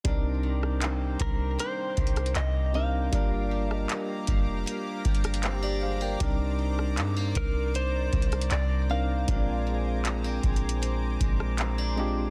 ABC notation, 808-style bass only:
X:1
M:4/4
L:1/8
Q:1/4=78
K:Cm
V:1 name="808-style bass" clef=bass
C,,3 C,, z C,, C,,2 | G,,,2 z F,,, z G,,,3 | C,,2 G,, C,,2 C,, C,,2 | B,,,3 B,,,2 B,,,3 |]